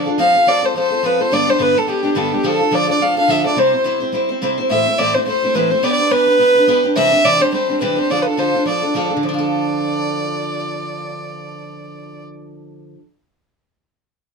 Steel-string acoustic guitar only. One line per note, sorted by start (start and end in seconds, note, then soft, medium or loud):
0.06 0.19 D4 soft
0.06 0.18 F4 medium
0.06 0.18 A4 medium
0.18 0.34 F3 medium
0.18 0.35 C4 medium
0.18 0.35 F4 loud
0.18 0.33 A4 loud
0.34 0.46 C4 soft
0.34 0.46 F4 soft
0.34 0.47 A4 soft
0.46 0.63 F3 medium
0.46 0.63 C4 medium
0.46 0.63 F4 loud
0.46 0.61 A4 medium
0.63 0.74 C4 soft
0.63 0.76 F4 soft
0.63 0.75 A4 medium
0.74 0.91 F3 medium
0.74 0.91 C4 medium
0.74 0.91 F4 medium
0.74 0.89 A4 medium
0.90 1.03 C4 soft
0.90 1.03 F4 medium
0.90 1.03 A4 medium
1.03 1.19 F3 medium
1.03 1.20 C4 medium
1.03 1.20 F4 medium
1.03 1.18 A4 loud
1.19 1.32 C4 medium
1.19 1.32 F4 medium
1.19 1.31 A4 medium
1.32 1.48 G2 medium
1.32 1.48 D3 medium
1.32 1.48 G3 medium
1.32 1.48 B3 loud
1.32 1.47 D4 loud
1.32 1.46 G4 medium
1.47 1.58 G3 soft
1.47 1.59 B3 soft
1.47 1.59 D4 soft
1.47 1.59 G4 medium
1.59 1.75 G2 medium
1.59 1.76 D3 medium
1.59 1.76 G3 medium
1.59 1.75 B3 medium
1.59 1.74 D4 medium
1.59 1.73 G4 medium
1.74 1.86 G3 soft
1.74 1.87 B3 soft
1.74 1.88 D4 medium
1.74 1.87 G4 medium
1.87 2.03 G3 medium
1.87 2.03 B3 medium
1.87 2.03 D4 medium
1.87 2.02 G4 medium
2.03 2.15 G3 soft
2.03 2.15 B3 medium
2.03 2.15 D4 medium
2.03 2.15 G4 medium
2.15 2.32 G2 medium
2.15 2.32 D3 medium
2.15 2.32 G3 medium
2.15 2.32 B3 loud
2.15 2.31 D4 loud
2.15 2.30 G4 loud
2.32 2.44 G3 medium
2.32 2.44 B3 soft
2.32 2.43 D4 medium
2.32 2.44 G4 medium
2.43 2.60 D3 medium
2.43 2.60 F3 medium
2.43 2.60 D4 loud
2.43 2.59 F4 medium
2.43 2.58 A4 loud
2.59 2.71 D4 soft
2.59 2.71 F4 soft
2.59 2.72 A4 medium
2.71 2.88 D3 medium
2.71 2.88 F3 loud
2.71 2.89 D4 medium
2.71 2.87 F4 loud
2.71 2.86 A4 medium
2.87 3.00 D4 soft
2.87 3.00 F4 medium
2.87 3.00 A4 medium
3.00 3.16 F3 medium
3.00 3.17 D4 medium
3.00 3.16 F4 medium
3.00 3.15 A4 medium
3.16 3.28 D4 soft
3.16 3.28 F4 medium
3.16 3.29 A4 medium
3.28 3.45 D3 medium
3.28 3.45 F3 loud
3.28 3.45 D4 medium
3.28 3.44 F4 loud
3.28 3.43 A4 loud
3.44 3.57 D4 soft
3.44 3.57 F4 medium
3.44 3.57 A4 medium
3.56 3.73 C3 medium
3.56 3.73 G3 medium
3.56 3.73 C4 loud
3.56 3.73 E4 loud
3.56 3.71 C5 medium
3.72 3.84 C4 soft
3.72 3.84 E4 soft
3.72 3.85 C5 medium
3.84 4.01 C3 medium
3.84 4.01 G3 medium
3.84 4.01 C4 medium
3.84 4.01 E4 medium
3.84 3.99 C5 loud
4.00 4.12 C4 medium
4.00 4.13 E4 medium
4.00 4.13 C5 medium
4.12 4.29 G3 medium
4.12 4.30 C4 medium
4.12 4.29 E4 medium
4.12 4.28 C5 medium
4.29 4.41 C4 medium
4.29 4.42 E4 medium
4.29 4.41 C5 medium
4.42 4.58 C3 loud
4.42 4.58 G3 loud
4.42 4.58 C4 loud
4.42 4.58 E4 loud
4.42 4.57 C5 loud
4.58 4.70 C4 medium
4.58 4.70 E4 medium
4.58 4.70 C5 medium
4.70 4.86 A2 medium
4.70 4.87 E3 medium
4.70 4.87 A3 medium
4.70 4.87 C4 loud
4.70 4.86 E4 loud
4.70 4.85 C5 medium
4.86 4.98 A3 soft
4.86 4.98 C4 soft
4.86 4.99 E4 soft
4.86 4.98 C5 soft
4.98 5.14 A2 medium
4.98 5.15 E3 medium
4.98 5.15 A3 medium
4.98 5.15 C4 loud
4.98 5.14 E4 medium
4.98 5.13 C5 loud
5.15 5.25 A3 soft
5.15 5.26 C4 medium
5.15 5.27 E4 medium
5.15 5.27 C5 soft
5.26 5.43 A3 medium
5.26 5.43 C4 medium
5.26 5.42 E4 medium
5.26 5.42 C5 medium
5.43 5.54 A3 medium
5.43 5.55 C4 soft
5.43 5.55 E4 soft
5.43 5.55 C5 medium
5.55 5.71 A2 medium
5.55 5.71 E3 loud
5.55 5.71 A3 medium
5.55 5.71 C4 medium
5.55 5.70 E4 loud
5.55 5.69 C5 loud
5.70 5.82 A3 medium
5.70 5.83 C4 medium
5.70 5.83 E4 medium
5.70 5.83 C5 medium
5.83 5.99 B3 loud
5.83 5.99 D4 medium
5.83 5.99 G4 loud
5.83 5.97 B4 loud
5.98 6.10 D4 soft
5.98 6.11 G4 soft
5.98 6.11 B4 medium
6.11 6.27 B3 medium
6.11 6.27 D4 medium
6.11 6.26 G4 loud
6.11 6.25 B4 medium
6.26 6.38 D4 soft
6.26 6.39 G4 soft
6.26 6.39 B4 medium
6.39 6.55 B3 medium
6.39 6.56 D4 medium
6.39 6.56 G4 medium
6.39 6.54 B4 medium
6.55 6.67 D4 medium
6.55 6.68 G4 medium
6.55 6.68 B4 medium
6.67 6.84 B3 medium
6.67 6.84 D4 loud
6.67 6.83 G4 loud
6.67 6.82 B4 loud
6.83 6.96 D4 medium
6.83 6.96 G4 medium
6.83 6.96 B4 medium
6.96 7.12 C3 medium
6.96 7.12 E3 loud
6.96 7.12 G3 medium
6.96 7.11 C4 medium
6.96 7.11 D4 loud
6.96 7.10 G4 loud
7.11 7.24 G3 soft
7.11 7.24 C4 soft
7.11 7.24 D4 soft
7.11 7.24 G4 medium
7.24 7.40 C3 medium
7.24 7.40 E3 medium
7.24 7.41 G3 loud
7.24 7.41 C4 medium
7.24 7.40 D4 medium
7.24 7.39 G4 loud
7.40 7.51 G3 soft
7.40 7.52 C4 soft
7.40 7.53 D4 soft
7.40 7.52 G4 medium
7.52 7.69 G3 medium
7.52 7.69 C4 medium
7.52 7.68 D4 medium
7.52 7.67 G4 medium
7.68 7.80 G3 medium
7.68 7.81 C4 medium
7.68 7.81 D4 medium
7.68 7.81 G4 medium
7.81 7.97 C3 medium
7.81 7.97 E3 medium
7.81 7.97 G3 loud
7.81 7.97 C4 loud
7.81 7.97 D4 loud
7.81 7.96 G4 loud
7.97 8.10 G3 soft
7.97 8.10 C4 medium
7.97 8.10 D4 medium
7.97 8.09 G4 medium
8.10 8.26 D3 medium
8.10 8.26 F3 medium
8.10 8.26 D4 medium
8.10 8.26 F4 loud
8.10 8.25 A4 loud
8.26 8.37 D4 soft
8.26 8.37 F4 soft
8.26 8.38 A4 soft
8.37 8.53 D3 medium
8.37 8.54 F3 medium
8.37 8.54 D4 medium
8.37 8.54 F4 medium
8.37 8.53 A4 medium
8.54 8.65 D4 soft
8.54 8.66 F4 soft
8.54 8.66 A4 soft
8.65 8.81 F3 medium
8.65 8.82 D4 medium
8.65 8.83 F4 medium
8.65 8.81 A4 medium
8.82 8.94 D4 medium
8.82 8.94 F4 soft
8.82 8.94 A4 medium
8.94 9.10 D3 medium
8.94 9.10 F3 medium
8.94 9.11 D4 loud
8.94 9.10 F4 loud
8.94 9.09 A4 loud
9.10 9.23 D4 soft
9.10 9.23 F4 medium
9.10 9.22 A4 medium
9.17 12.95 D3 medium
9.23 12.98 F3 medium
9.29 13.01 D4 loud
9.34 13.03 F4 medium
9.39 13.06 A4 loud